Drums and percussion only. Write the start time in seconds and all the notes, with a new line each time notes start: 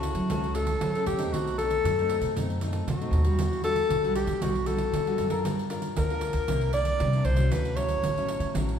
0.03 pandeiro
0.15 pandeiro
0.30 pandeiro
0.44 pandeiro
0.55 pandeiro
0.67 pandeiro
0.81 pandeiro
0.95 pandeiro
1.06 pandeiro
1.19 pandeiro
1.34 pandeiro
1.48 pandeiro
1.59 pandeiro
1.71 pandeiro
1.85 pandeiro
1.99 pandeiro
2.09 pandeiro
2.22 pandeiro
2.37 pandeiro
2.50 pandeiro
2.61 pandeiro
2.73 pandeiro
2.88 pandeiro
3.01 pandeiro
3.13 pandeiro
3.24 pandeiro
3.39 pandeiro
3.53 pandeiro
3.64 pandeiro
3.76 pandeiro
3.90 pandeiro
4.04 pandeiro
4.16 pandeiro
4.27 pandeiro
4.42 pandeiro
4.55 pandeiro
4.66 pandeiro
4.78 pandeiro
4.93 pandeiro
5.07 pandeiro
5.18 pandeiro
5.30 pandeiro
5.45 pandeiro
5.59 pandeiro
5.70 pandeiro
5.82 pandeiro
5.96 pandeiro
6.10 pandeiro
6.21 pandeiro
6.33 pandeiro
6.48 pandeiro
6.61 pandeiro
6.73 pandeiro
6.85 pandeiro
7.00 pandeiro
7.13 pandeiro
7.25 pandeiro
7.36 pandeiro
7.52 pandeiro
7.65 pandeiro
7.77 pandeiro
7.89 pandeiro
8.04 pandeiro
8.18 pandeiro
8.29 pandeiro
8.40 pandeiro
8.55 pandeiro
8.69 pandeiro